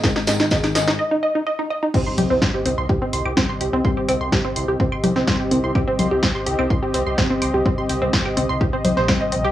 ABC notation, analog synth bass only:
X:1
M:4/4
L:1/16
Q:1/4=126
K:Cm
V:1 name="Analog synth bass" clef=bass
z6 z C,, z8 | C,, z C,, C,, C,, z C,, C,, C,, z C,, C,, C,, z C,, C,, | C,, z C,, C,, C,, z C,, C,, C,, z C,, C,, C,, z C,, C,, | C,, z C,, C,, C,, z C,, C,, C,, z C,, C,, C,, z C,, C,, |
C,, z C,, C,, C,, z C,, C,, C,, z C,, B,,, C,, z B,,, C,, |]